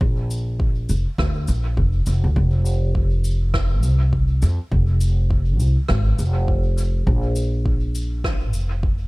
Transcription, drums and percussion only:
0.01 kick
0.31 cabasa
0.60 kick
0.89 cabasa
1.18 kick, cross-stick
1.48 cabasa
1.77 kick
2.06 cabasa
2.36 kick
2.66 cabasa
2.95 kick
3.24 cabasa
3.54 kick, cross-stick
3.83 cabasa
4.13 kick
4.42 cabasa
4.72 kick
5.01 cabasa
5.30 kick
5.60 cabasa
5.88 kick, cross-stick
6.19 cabasa
6.48 kick
6.78 cabasa
7.07 kick
7.36 cabasa
7.66 kick
7.95 cabasa
8.24 kick, cross-stick
8.53 cabasa
8.83 kick

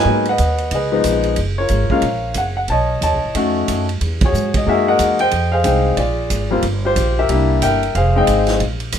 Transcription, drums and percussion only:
0.25 ride
0.38 kick, hi-hat pedal, ride
0.58 ride
0.71 kick, ride
1.04 kick, hi-hat pedal, ride
1.23 ride
1.36 kick, ride
1.69 kick, hi-hat pedal, ride
1.90 kick
2.02 kick, ride
2.34 kick, hi-hat pedal, ride
2.68 kick, ride
3.02 kick, hi-hat pedal, ride
3.35 kick, ride
3.68 kick, hi-hat pedal, ride
3.89 ride
4.01 kick, ride
4.21 kick, ride
4.34 hi-hat pedal
4.54 kick, ride
4.67 kick
4.99 kick, hi-hat pedal, ride
5.19 ride
5.31 kick, ride
5.64 kick, hi-hat pedal, ride
5.97 kick, ride
6.30 kick, hi-hat pedal, ride
6.62 kick, ride
6.96 kick, hi-hat pedal, ride
7.29 kick, ride
7.62 kick, hi-hat pedal, ride
7.83 ride
7.95 kick, ride
8.27 kick, hi-hat pedal, ride
8.47 snare, ride
8.60 kick, ride
8.80 ride
8.92 kick, hi-hat pedal, ride

